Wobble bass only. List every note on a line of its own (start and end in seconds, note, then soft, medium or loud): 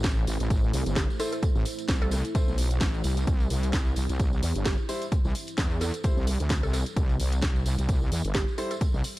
0.00 0.26 A1 loud
0.27 0.38 A1 loud
0.40 0.72 A1 loud
0.73 0.84 C2 loud
0.86 1.07 G1 loud
1.55 1.64 A1 loud
1.89 2.23 C2 loud
2.48 2.79 B1 loud
2.81 3.03 A1 loud
3.04 3.26 C2 loud
3.27 3.49 C2 loud
3.50 3.95 C2 loud
3.97 4.07 C2 loud
4.09 4.41 C2 loud
4.43 4.53 E2 loud
4.56 4.77 G1 loud
5.25 5.33 C2 loud
5.58 5.92 E2 loud
6.17 6.38 C2 loud
6.40 6.61 D2 loud
6.63 6.84 C2 loud
6.96 7.18 C2 loud
7.20 7.64 C2 loud
7.66 7.76 C2 loud
7.79 8.10 C2 loud
8.12 8.23 E2 loud
8.25 8.46 G1 loud
8.94 9.02 C2 loud